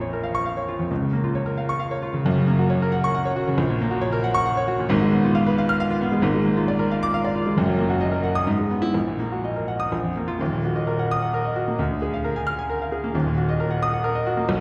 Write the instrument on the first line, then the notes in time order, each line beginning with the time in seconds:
grand piano
Already playing: A#1 F2 A#3 F4
0.01 C#5
0.13 A#4
0.23 F5
0.35 C#6
0.46 F5
0.57 C#5
0.68 F4
0.79 F2
0.91 C#2
1.02 C#3
1.13 A#3
1.24 F4
1.35 C#5
1.46 A#4
1.58 F5
1.69 C#6
1.80 F5
1.91 C#5
2.02 F4
2.14 C#3
2.25 F#1 F#2
2.36 C#3
2.48 A#3
2.59 F#4
2.70 C#5
2.82 A#4
2.92 F#5
3.04 C#6
3.15 F#5
3.25 C#5
3.36 F#4
3.48 C#3
3.58 A#1
3.69 A#2
3.81 A#3
3.91 F#4
4.01 C#5
4.12 A#4
4.24 F#5
4.34 C#6
4.46 F#5
4.57 C#5
4.68 F#4
4.79 A#2
4.89 G#1 G#2
5.02 G#3
5.12 B3
5.24 F4
5.35 F5
5.46 B4
5.58 F5
5.69 F6
5.80 F5
5.90 F4
6.01 B3
6.12 G#3
6.22 G#1 G#2
6.35 G#3
6.46 A#3
6.57 F4
6.68 D5
6.79 A#4
6.91 F5
7.03 D6
7.14 F5
7.24 D5
7.35 F4
7.46 G#3
7.57 F#1 F#2
7.68 F#3
7.79 A#3
7.90 F#4
8.00 D#5
8.12 A#4
8.24 F#5
8.35 D#6
8.47 G#2
8.59 G#3
8.71 B3
8.82 E4
8.94 A#1
9.07 A#2
9.20 A#3
9.32 F#4
9.44 D#5
9.56 A#4
9.68 F#5
9.80 D#6
9.92 A#1
10.03 F2
10.17 A#3
10.28 F4
10.39 D#1 D#2
10.52 A#2
10.65 F#4
10.76 D#5
10.87 A#4
10.99 F#5
11.11 D#6
11.22 F#5
11.34 A#4
11.45 D#5
11.56 F#4
11.68 A#3
11.79 D2
11.91 D3
12.02 G#4
12.14 F5
12.24 A#4
12.36 G#5
12.47 F6
12.59 G#5
12.70 A#4
12.82 F5
12.92 G#4
13.04 A#3
13.14 D#1 D#2
13.26 A#2
13.37 F#4
13.49 D#5
13.60 A#4
13.71 F#5
13.83 D#6
13.93 F#5
14.04 A#4
14.15 D#5
14.27 F#4
14.37 A#3
14.49 B1